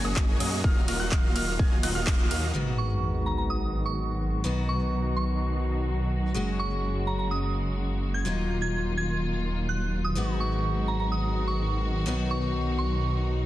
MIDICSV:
0, 0, Header, 1, 9, 480
1, 0, Start_track
1, 0, Tempo, 476190
1, 647, Time_signature, 4, 2, 24, 8
1, 13567, End_track
2, 0, Start_track
2, 0, Title_t, "Grand piano"
2, 0, Program_c, 0, 0
2, 47, Note_on_c, 0, 87, 101
2, 149, Note_off_c, 0, 87, 0
2, 406, Note_on_c, 0, 87, 96
2, 611, Note_off_c, 0, 87, 0
2, 646, Note_on_c, 0, 89, 103
2, 814, Note_off_c, 0, 89, 0
2, 885, Note_on_c, 0, 89, 94
2, 988, Note_off_c, 0, 89, 0
2, 1006, Note_on_c, 0, 90, 102
2, 1098, Note_off_c, 0, 90, 0
2, 1366, Note_on_c, 0, 89, 112
2, 1535, Note_off_c, 0, 89, 0
2, 1606, Note_on_c, 0, 92, 84
2, 1775, Note_off_c, 0, 92, 0
2, 1846, Note_on_c, 0, 90, 92
2, 1938, Note_off_c, 0, 90, 0
2, 1966, Note_on_c, 0, 89, 100
2, 2069, Note_off_c, 0, 89, 0
2, 2326, Note_on_c, 0, 89, 98
2, 2530, Note_off_c, 0, 89, 0
2, 13567, End_track
3, 0, Start_track
3, 0, Title_t, "Synth bell"
3, 0, Program_c, 1, 98
3, 2806, Note_on_c, 1, 85, 82
3, 3262, Note_off_c, 1, 85, 0
3, 3288, Note_on_c, 1, 82, 78
3, 3364, Note_off_c, 1, 82, 0
3, 3408, Note_on_c, 1, 82, 69
3, 3484, Note_off_c, 1, 82, 0
3, 3527, Note_on_c, 1, 87, 82
3, 3676, Note_off_c, 1, 87, 0
3, 3886, Note_on_c, 1, 85, 83
3, 4534, Note_off_c, 1, 85, 0
3, 4726, Note_on_c, 1, 85, 87
3, 5182, Note_off_c, 1, 85, 0
3, 5206, Note_on_c, 1, 85, 84
3, 5567, Note_off_c, 1, 85, 0
3, 6647, Note_on_c, 1, 85, 87
3, 7103, Note_off_c, 1, 85, 0
3, 7127, Note_on_c, 1, 82, 81
3, 7204, Note_off_c, 1, 82, 0
3, 7247, Note_on_c, 1, 82, 69
3, 7324, Note_off_c, 1, 82, 0
3, 7369, Note_on_c, 1, 87, 87
3, 7517, Note_off_c, 1, 87, 0
3, 8208, Note_on_c, 1, 92, 80
3, 8375, Note_off_c, 1, 92, 0
3, 8687, Note_on_c, 1, 92, 86
3, 8836, Note_off_c, 1, 92, 0
3, 9047, Note_on_c, 1, 92, 85
3, 9195, Note_off_c, 1, 92, 0
3, 9766, Note_on_c, 1, 90, 78
3, 9915, Note_off_c, 1, 90, 0
3, 10125, Note_on_c, 1, 87, 83
3, 10294, Note_off_c, 1, 87, 0
3, 10486, Note_on_c, 1, 85, 85
3, 10943, Note_off_c, 1, 85, 0
3, 10967, Note_on_c, 1, 82, 83
3, 11044, Note_off_c, 1, 82, 0
3, 11087, Note_on_c, 1, 82, 73
3, 11164, Note_off_c, 1, 82, 0
3, 11206, Note_on_c, 1, 87, 86
3, 11355, Note_off_c, 1, 87, 0
3, 11568, Note_on_c, 1, 85, 81
3, 12215, Note_off_c, 1, 85, 0
3, 12406, Note_on_c, 1, 85, 87
3, 12863, Note_off_c, 1, 85, 0
3, 12887, Note_on_c, 1, 85, 83
3, 13247, Note_off_c, 1, 85, 0
3, 13567, End_track
4, 0, Start_track
4, 0, Title_t, "Supersaw synth"
4, 0, Program_c, 2, 81
4, 45, Note_on_c, 2, 68, 83
4, 45, Note_on_c, 2, 73, 81
4, 45, Note_on_c, 2, 75, 97
4, 46, Note_on_c, 2, 58, 88
4, 46, Note_on_c, 2, 66, 83
4, 148, Note_off_c, 2, 58, 0
4, 148, Note_off_c, 2, 66, 0
4, 148, Note_off_c, 2, 68, 0
4, 148, Note_off_c, 2, 73, 0
4, 148, Note_off_c, 2, 75, 0
4, 165, Note_on_c, 2, 68, 78
4, 166, Note_on_c, 2, 58, 87
4, 166, Note_on_c, 2, 66, 76
4, 166, Note_on_c, 2, 73, 77
4, 166, Note_on_c, 2, 75, 93
4, 377, Note_off_c, 2, 66, 0
4, 377, Note_off_c, 2, 68, 0
4, 377, Note_off_c, 2, 73, 0
4, 377, Note_off_c, 2, 75, 0
4, 378, Note_off_c, 2, 58, 0
4, 406, Note_on_c, 2, 58, 91
4, 406, Note_on_c, 2, 66, 82
4, 406, Note_on_c, 2, 73, 83
4, 406, Note_on_c, 2, 75, 97
4, 407, Note_on_c, 2, 68, 86
4, 611, Note_off_c, 2, 58, 0
4, 611, Note_off_c, 2, 66, 0
4, 611, Note_off_c, 2, 68, 0
4, 611, Note_off_c, 2, 73, 0
4, 611, Note_off_c, 2, 75, 0
4, 646, Note_on_c, 2, 58, 92
4, 646, Note_on_c, 2, 77, 108
4, 647, Note_on_c, 2, 65, 86
4, 647, Note_on_c, 2, 66, 82
4, 647, Note_on_c, 2, 75, 84
4, 815, Note_off_c, 2, 58, 0
4, 815, Note_off_c, 2, 65, 0
4, 815, Note_off_c, 2, 66, 0
4, 815, Note_off_c, 2, 75, 0
4, 815, Note_off_c, 2, 77, 0
4, 887, Note_on_c, 2, 58, 94
4, 887, Note_on_c, 2, 65, 86
4, 887, Note_on_c, 2, 66, 86
4, 887, Note_on_c, 2, 75, 82
4, 887, Note_on_c, 2, 77, 102
4, 989, Note_off_c, 2, 58, 0
4, 989, Note_off_c, 2, 65, 0
4, 989, Note_off_c, 2, 66, 0
4, 989, Note_off_c, 2, 75, 0
4, 989, Note_off_c, 2, 77, 0
4, 1006, Note_on_c, 2, 66, 84
4, 1007, Note_on_c, 2, 58, 88
4, 1007, Note_on_c, 2, 65, 83
4, 1007, Note_on_c, 2, 75, 81
4, 1007, Note_on_c, 2, 78, 97
4, 1098, Note_off_c, 2, 58, 0
4, 1098, Note_off_c, 2, 65, 0
4, 1098, Note_off_c, 2, 66, 0
4, 1098, Note_off_c, 2, 75, 0
4, 1098, Note_off_c, 2, 78, 0
4, 1126, Note_on_c, 2, 58, 93
4, 1126, Note_on_c, 2, 77, 103
4, 1127, Note_on_c, 2, 65, 84
4, 1127, Note_on_c, 2, 66, 87
4, 1127, Note_on_c, 2, 75, 87
4, 1330, Note_off_c, 2, 58, 0
4, 1330, Note_off_c, 2, 77, 0
4, 1331, Note_off_c, 2, 65, 0
4, 1331, Note_off_c, 2, 66, 0
4, 1331, Note_off_c, 2, 75, 0
4, 1367, Note_on_c, 2, 58, 99
4, 1367, Note_on_c, 2, 65, 92
4, 1367, Note_on_c, 2, 66, 94
4, 1367, Note_on_c, 2, 75, 91
4, 1367, Note_on_c, 2, 77, 112
4, 1535, Note_off_c, 2, 58, 0
4, 1535, Note_off_c, 2, 65, 0
4, 1535, Note_off_c, 2, 66, 0
4, 1535, Note_off_c, 2, 75, 0
4, 1535, Note_off_c, 2, 77, 0
4, 1607, Note_on_c, 2, 58, 74
4, 1607, Note_on_c, 2, 65, 70
4, 1607, Note_on_c, 2, 66, 69
4, 1607, Note_on_c, 2, 75, 70
4, 1607, Note_on_c, 2, 80, 83
4, 1775, Note_off_c, 2, 58, 0
4, 1775, Note_off_c, 2, 65, 0
4, 1775, Note_off_c, 2, 66, 0
4, 1775, Note_off_c, 2, 75, 0
4, 1775, Note_off_c, 2, 80, 0
4, 1847, Note_on_c, 2, 58, 84
4, 1847, Note_on_c, 2, 65, 75
4, 1847, Note_on_c, 2, 66, 73
4, 1847, Note_on_c, 2, 75, 75
4, 1847, Note_on_c, 2, 78, 91
4, 1938, Note_off_c, 2, 58, 0
4, 1938, Note_off_c, 2, 65, 0
4, 1938, Note_off_c, 2, 66, 0
4, 1938, Note_off_c, 2, 75, 0
4, 1938, Note_off_c, 2, 78, 0
4, 1966, Note_on_c, 2, 58, 93
4, 1966, Note_on_c, 2, 65, 82
4, 1966, Note_on_c, 2, 66, 83
4, 1966, Note_on_c, 2, 75, 85
4, 1966, Note_on_c, 2, 77, 100
4, 2068, Note_off_c, 2, 65, 0
4, 2068, Note_off_c, 2, 75, 0
4, 2069, Note_off_c, 2, 58, 0
4, 2069, Note_off_c, 2, 66, 0
4, 2069, Note_off_c, 2, 77, 0
4, 2086, Note_on_c, 2, 58, 83
4, 2086, Note_on_c, 2, 66, 73
4, 2086, Note_on_c, 2, 75, 73
4, 2086, Note_on_c, 2, 77, 89
4, 2087, Note_on_c, 2, 65, 73
4, 2298, Note_off_c, 2, 58, 0
4, 2298, Note_off_c, 2, 65, 0
4, 2298, Note_off_c, 2, 66, 0
4, 2298, Note_off_c, 2, 75, 0
4, 2298, Note_off_c, 2, 77, 0
4, 2326, Note_on_c, 2, 58, 91
4, 2326, Note_on_c, 2, 65, 83
4, 2326, Note_on_c, 2, 66, 81
4, 2326, Note_on_c, 2, 75, 82
4, 2326, Note_on_c, 2, 77, 100
4, 2530, Note_off_c, 2, 65, 0
4, 2530, Note_off_c, 2, 75, 0
4, 2531, Note_off_c, 2, 58, 0
4, 2531, Note_off_c, 2, 66, 0
4, 2531, Note_off_c, 2, 77, 0
4, 13567, End_track
5, 0, Start_track
5, 0, Title_t, "Steel-string acoustic guitar"
5, 0, Program_c, 3, 25
5, 2554, Note_on_c, 3, 44, 67
5, 2560, Note_on_c, 3, 56, 63
5, 2566, Note_on_c, 3, 59, 61
5, 2573, Note_on_c, 3, 63, 62
5, 2578, Note_on_c, 3, 66, 75
5, 4452, Note_off_c, 3, 44, 0
5, 4455, Note_off_c, 3, 56, 0
5, 4458, Note_off_c, 3, 59, 0
5, 4461, Note_off_c, 3, 63, 0
5, 4464, Note_off_c, 3, 66, 0
5, 4474, Note_on_c, 3, 47, 70
5, 4480, Note_on_c, 3, 54, 61
5, 4486, Note_on_c, 3, 59, 63
5, 4492, Note_on_c, 3, 63, 62
5, 4499, Note_on_c, 3, 66, 76
5, 6372, Note_off_c, 3, 47, 0
5, 6375, Note_off_c, 3, 54, 0
5, 6378, Note_off_c, 3, 59, 0
5, 6381, Note_off_c, 3, 63, 0
5, 6384, Note_off_c, 3, 66, 0
5, 6395, Note_on_c, 3, 56, 69
5, 6404, Note_on_c, 3, 58, 61
5, 6412, Note_on_c, 3, 61, 66
5, 6419, Note_on_c, 3, 66, 73
5, 8292, Note_off_c, 3, 56, 0
5, 8296, Note_off_c, 3, 58, 0
5, 8300, Note_off_c, 3, 61, 0
5, 8304, Note_off_c, 3, 66, 0
5, 8315, Note_on_c, 3, 54, 69
5, 8323, Note_on_c, 3, 58, 66
5, 8332, Note_on_c, 3, 63, 61
5, 8340, Note_on_c, 3, 65, 75
5, 10212, Note_off_c, 3, 54, 0
5, 10216, Note_off_c, 3, 58, 0
5, 10220, Note_off_c, 3, 63, 0
5, 10225, Note_off_c, 3, 65, 0
5, 10235, Note_on_c, 3, 44, 66
5, 10241, Note_on_c, 3, 56, 66
5, 10247, Note_on_c, 3, 59, 64
5, 10253, Note_on_c, 3, 63, 61
5, 10259, Note_on_c, 3, 66, 78
5, 12132, Note_off_c, 3, 44, 0
5, 12135, Note_off_c, 3, 56, 0
5, 12138, Note_off_c, 3, 59, 0
5, 12141, Note_off_c, 3, 63, 0
5, 12144, Note_off_c, 3, 66, 0
5, 12154, Note_on_c, 3, 47, 70
5, 12161, Note_on_c, 3, 54, 62
5, 12167, Note_on_c, 3, 59, 61
5, 12172, Note_on_c, 3, 63, 63
5, 12179, Note_on_c, 3, 66, 78
5, 13567, Note_off_c, 3, 47, 0
5, 13567, Note_off_c, 3, 54, 0
5, 13567, Note_off_c, 3, 59, 0
5, 13567, Note_off_c, 3, 63, 0
5, 13567, Note_off_c, 3, 66, 0
5, 13567, End_track
6, 0, Start_track
6, 0, Title_t, "String section"
6, 0, Program_c, 4, 48
6, 0, Note_on_c, 4, 49, 85
6, 0, Note_on_c, 4, 54, 78
6, 0, Note_on_c, 4, 56, 78
6, 0, Note_on_c, 4, 58, 77
6, 0, Note_on_c, 4, 66, 89
6, 628, Note_off_c, 4, 49, 0
6, 628, Note_off_c, 4, 54, 0
6, 628, Note_off_c, 4, 56, 0
6, 646, Note_on_c, 4, 51, 83
6, 646, Note_on_c, 4, 54, 74
6, 647, Note_on_c, 4, 65, 79
6, 2526, Note_off_c, 4, 66, 0
6, 2529, Note_off_c, 4, 58, 0
6, 2547, Note_off_c, 4, 51, 0
6, 2547, Note_off_c, 4, 54, 0
6, 2548, Note_off_c, 4, 65, 0
6, 2566, Note_on_c, 4, 51, 72
6, 2567, Note_on_c, 4, 54, 69
6, 2567, Note_on_c, 4, 56, 67
6, 2567, Note_on_c, 4, 59, 69
6, 2567, Note_on_c, 4, 66, 84
6, 4468, Note_off_c, 4, 56, 0
6, 4468, Note_off_c, 4, 59, 0
6, 4487, Note_on_c, 4, 47, 76
6, 4487, Note_on_c, 4, 63, 71
6, 6368, Note_off_c, 4, 51, 0
6, 6388, Note_off_c, 4, 47, 0
6, 6388, Note_off_c, 4, 63, 0
6, 6406, Note_on_c, 4, 58, 67
6, 6407, Note_on_c, 4, 49, 75
6, 6407, Note_on_c, 4, 56, 70
6, 8286, Note_off_c, 4, 66, 0
6, 8287, Note_off_c, 4, 54, 0
6, 8308, Note_off_c, 4, 49, 0
6, 8308, Note_off_c, 4, 56, 0
6, 8326, Note_on_c, 4, 54, 71
6, 8326, Note_on_c, 4, 65, 83
6, 8327, Note_on_c, 4, 51, 73
6, 10208, Note_off_c, 4, 58, 0
6, 10227, Note_off_c, 4, 51, 0
6, 10227, Note_off_c, 4, 65, 0
6, 10246, Note_on_c, 4, 51, 75
6, 10246, Note_on_c, 4, 56, 70
6, 10246, Note_on_c, 4, 59, 67
6, 10247, Note_on_c, 4, 66, 81
6, 12147, Note_off_c, 4, 56, 0
6, 12147, Note_off_c, 4, 59, 0
6, 12167, Note_on_c, 4, 47, 75
6, 12167, Note_on_c, 4, 63, 71
6, 13567, Note_off_c, 4, 47, 0
6, 13567, Note_off_c, 4, 51, 0
6, 13567, Note_off_c, 4, 54, 0
6, 13567, Note_off_c, 4, 63, 0
6, 13567, Note_off_c, 4, 66, 0
6, 13567, End_track
7, 0, Start_track
7, 0, Title_t, "Detuned saw bass"
7, 0, Program_c, 5, 39
7, 47, Note_on_c, 5, 30, 99
7, 143, Note_off_c, 5, 30, 0
7, 167, Note_on_c, 5, 30, 101
7, 383, Note_off_c, 5, 30, 0
7, 406, Note_on_c, 5, 42, 93
7, 623, Note_off_c, 5, 42, 0
7, 647, Note_on_c, 5, 27, 95
7, 863, Note_off_c, 5, 27, 0
7, 886, Note_on_c, 5, 27, 97
7, 983, Note_off_c, 5, 27, 0
7, 1006, Note_on_c, 5, 27, 96
7, 1102, Note_off_c, 5, 27, 0
7, 1127, Note_on_c, 5, 27, 102
7, 1343, Note_off_c, 5, 27, 0
7, 1367, Note_on_c, 5, 27, 95
7, 1583, Note_off_c, 5, 27, 0
7, 1607, Note_on_c, 5, 27, 102
7, 1823, Note_off_c, 5, 27, 0
7, 1846, Note_on_c, 5, 27, 96
7, 1943, Note_off_c, 5, 27, 0
7, 1967, Note_on_c, 5, 27, 102
7, 2063, Note_off_c, 5, 27, 0
7, 2086, Note_on_c, 5, 27, 96
7, 2303, Note_off_c, 5, 27, 0
7, 2326, Note_on_c, 5, 39, 94
7, 2543, Note_off_c, 5, 39, 0
7, 2567, Note_on_c, 5, 32, 82
7, 4463, Note_off_c, 5, 32, 0
7, 4487, Note_on_c, 5, 35, 83
7, 6383, Note_off_c, 5, 35, 0
7, 6407, Note_on_c, 5, 30, 82
7, 8303, Note_off_c, 5, 30, 0
7, 8327, Note_on_c, 5, 27, 84
7, 10223, Note_off_c, 5, 27, 0
7, 10247, Note_on_c, 5, 32, 86
7, 12143, Note_off_c, 5, 32, 0
7, 12166, Note_on_c, 5, 35, 88
7, 13567, Note_off_c, 5, 35, 0
7, 13567, End_track
8, 0, Start_track
8, 0, Title_t, "Sub drop"
8, 0, Program_c, 6, 103
8, 2566, Note_on_c, 6, 60, 64
8, 4487, Note_off_c, 6, 60, 0
8, 13567, End_track
9, 0, Start_track
9, 0, Title_t, "Drums"
9, 165, Note_on_c, 9, 39, 114
9, 167, Note_on_c, 9, 36, 113
9, 265, Note_off_c, 9, 39, 0
9, 267, Note_off_c, 9, 36, 0
9, 407, Note_on_c, 9, 46, 101
9, 407, Note_on_c, 9, 51, 81
9, 508, Note_off_c, 9, 46, 0
9, 508, Note_off_c, 9, 51, 0
9, 647, Note_on_c, 9, 36, 121
9, 748, Note_off_c, 9, 36, 0
9, 887, Note_on_c, 9, 46, 109
9, 887, Note_on_c, 9, 51, 84
9, 988, Note_off_c, 9, 46, 0
9, 988, Note_off_c, 9, 51, 0
9, 1125, Note_on_c, 9, 39, 121
9, 1127, Note_on_c, 9, 36, 114
9, 1226, Note_off_c, 9, 39, 0
9, 1228, Note_off_c, 9, 36, 0
9, 1368, Note_on_c, 9, 46, 112
9, 1368, Note_on_c, 9, 51, 90
9, 1469, Note_off_c, 9, 46, 0
9, 1469, Note_off_c, 9, 51, 0
9, 1607, Note_on_c, 9, 36, 120
9, 1707, Note_off_c, 9, 36, 0
9, 1848, Note_on_c, 9, 46, 101
9, 1848, Note_on_c, 9, 51, 85
9, 1948, Note_off_c, 9, 46, 0
9, 1948, Note_off_c, 9, 51, 0
9, 2086, Note_on_c, 9, 39, 118
9, 2087, Note_on_c, 9, 36, 115
9, 2088, Note_on_c, 9, 46, 58
9, 2187, Note_off_c, 9, 36, 0
9, 2187, Note_off_c, 9, 39, 0
9, 2189, Note_off_c, 9, 46, 0
9, 2328, Note_on_c, 9, 46, 105
9, 2328, Note_on_c, 9, 51, 86
9, 2429, Note_off_c, 9, 46, 0
9, 2429, Note_off_c, 9, 51, 0
9, 13567, End_track
0, 0, End_of_file